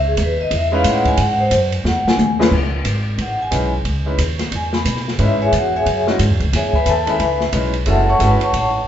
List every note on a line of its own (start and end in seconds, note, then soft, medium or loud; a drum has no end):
0.00 0.16 C#2 medium
0.08 0.19 G#4 medium
0.17 0.50 D#2 medium
0.17 kick soft
0.17 hi-hat pedal medium
0.17 ride medium
0.22 0.40 B4 medium
0.41 0.52 D#5 medium
0.51 0.83 E2 medium
0.51 kick soft
0.51 ride medium
0.56 0.74 E5 medium
0.72 1.15 G#3 medium
0.72 1.16 C#4 medium
0.72 1.16 D#4 medium
0.72 1.16 E4 medium
0.72 1.16 B4 medium
0.72 0.86 F5 loud
0.84 1.17 A2 medium
0.84 kick soft
0.84 hi-hat pedal medium
0.84 ride medium
0.90 1.07 F#5 medium
1.05 1.19 G#5 loud
1.05 kick soft
1.05 ride soft
1.17 1.50 G#2 medium
1.17 kick soft
1.17 ride medium
1.22 1.40 F#5 medium
1.40 1.47 C5 loud
1.51 1.83 F#2 medium
1.51 kick soft
1.51 hi-hat pedal medium
1.51 ride medium
1.72 ride soft
1.84 2.04 E2 medium
1.84 2.06 F#5 medium
1.84 snare medium
2.04 2.38 G#5 loud
2.04 muted upright bass stroke soft
2.04 snare medium
2.17 2.50 D#2 medium
2.17 hi-hat pedal medium
2.17 high tom medium
2.39 2.50 G#3 medium
2.39 2.51 C#4 medium
2.39 2.51 D#4 medium
2.39 2.51 E4 medium
2.39 2.51 B4 medium
2.39 snare medium
2.52 2.84 C#2 medium
2.52 kick medium
2.52 crash medium
2.85 3.17 G#1 medium
2.85 kick soft
2.85 hi-hat pedal soft
2.85 ride medium
3.18 3.50 A1 medium
3.18 kick soft
3.18 ride medium
3.22 3.40 F#5 medium
3.42 3.72 G#5 medium
3.51 3.84 B1 medium
3.51 3.70 G#3 medium
3.51 3.70 C#4 medium
3.51 3.70 D#4 medium
3.51 3.71 E4 soft
3.51 3.71 B4 medium
3.51 kick soft
3.51 hi-hat pedal medium
3.51 ride medium
3.85 4.17 C#2 medium
3.85 kick soft
3.85 ride medium
4.06 4.17 G#3 medium
4.06 4.17 C#4 medium
4.06 4.18 D#4 medium
4.06 4.18 E4 medium
4.06 4.18 B4 medium
4.18 4.51 D#2 medium
4.18 kick soft
4.18 hi-hat pedal medium
4.18 ride medium
4.39 snare soft
4.39 ride soft
4.52 4.84 E2 medium
4.52 4.74 G#5 medium
4.52 kick soft
4.52 ride medium
4.73 5.05 B5 loud
4.73 snare medium
4.85 5.18 B2 medium
4.85 kick soft
4.85 hi-hat pedal medium
4.85 ride medium
4.96 snare soft
5.08 snare soft
5.19 5.51 G#2 medium
5.19 5.37 G#3 medium
5.19 5.38 C#4 medium
5.19 5.38 D#4 medium
5.19 5.38 E4 medium
5.19 5.41 E4 medium
5.19 5.38 B4 medium
5.19 kick soft
5.19 ride medium
5.23 5.41 B4 medium
5.23 5.41 C#5 medium
5.23 5.41 E5 medium
5.42 5.53 G#4 medium
5.42 5.53 C#5 medium
5.42 5.53 E5 medium
5.42 5.53 G#5 loud
5.52 5.85 E2 medium
5.52 5.74 F#4 medium
5.52 5.74 F#5 medium
5.52 kick soft
5.52 hi-hat pedal soft
5.52 ride medium
5.76 6.06 G#4 medium
5.76 6.06 C#5 medium
5.76 6.06 E5 medium
5.76 6.06 G#5 medium
5.86 6.18 F#2 medium
5.86 kick soft
5.86 ride medium
6.07 6.18 G#3 medium
6.07 6.18 C#4 medium
6.07 6.18 D#4 medium
6.07 6.18 E4 medium
6.07 6.18 F#4 medium
6.07 snare soft
6.19 6.30 G#2 medium
6.19 kick soft
6.19 hi-hat pedal medium
6.19 ride medium
6.30 6.41 E2 medium
6.40 6.52 C#2 medium
6.40 kick soft
6.40 ride soft
6.53 6.72 E2 medium
6.53 6.74 G#4 medium
6.53 6.75 C#5 medium
6.53 6.74 E5 medium
6.53 6.74 G#5 medium
6.53 kick soft
6.53 snare soft
6.53 ride medium
6.73 6.87 B4 medium
6.73 6.87 E5 medium
6.73 6.87 G#5 medium
6.73 6.87 B5 loud
6.73 muted upright bass stroke soft
6.73 kick medium
6.86 7.18 D#2 medium
6.86 7.08 A5 medium
6.86 kick soft
6.86 hi-hat pedal medium
6.86 ride medium
6.90 7.08 A4 medium
7.06 7.18 G#3 medium
7.06 7.18 C#4 soft
7.06 7.18 D#4 medium
7.06 7.18 E4 medium
7.06 7.19 B4 medium
7.06 7.39 B4 medium
7.06 7.39 E5 medium
7.06 7.39 G#5 medium
7.06 7.39 B5 loud
7.06 ride soft
7.19 7.52 C#2 medium
7.19 kick soft
7.19 ride medium
7.40 snare soft
7.53 7.85 B1 medium
7.53 7.72 G#3 medium
7.53 7.71 C#4 medium
7.53 7.72 D#4 medium
7.53 7.72 E4 soft
7.53 7.72 B4 medium
7.53 kick soft
7.53 hi-hat pedal medium
7.53 ride medium
7.74 ride soft
7.86 8.18 F#1 medium
7.86 8.05 G#3 medium
7.86 8.05 C#4 medium
7.86 8.05 E4 medium
7.86 8.06 F#4 medium
7.86 8.06 A4 medium
7.86 kick soft
7.86 ride medium
7.90 8.09 A4 medium
7.90 8.08 E5 medium
7.90 8.08 F#5 medium
7.90 8.08 A5 medium
8.10 8.21 C#5 medium
8.10 8.21 F#5 medium
8.10 8.21 A5 medium
8.10 8.21 C#6 loud
8.19 8.39 G#1 medium
8.19 8.39 G#3 medium
8.19 8.39 C#4 medium
8.19 8.39 E4 medium
8.19 8.39 F#4 medium
8.19 8.39 A4 medium
8.19 kick soft
8.19 hi-hat pedal soft
8.19 ride medium
8.23 8.42 B4 medium
8.23 8.42 B5 medium
8.40 8.73 C#5 medium
8.40 8.73 F#5 medium
8.40 8.73 A5 medium
8.40 8.73 C#6 medium
8.40 muted upright bass stroke soft
8.40 ride soft
8.53 8.86 A1 medium
8.53 kick soft
8.53 ride medium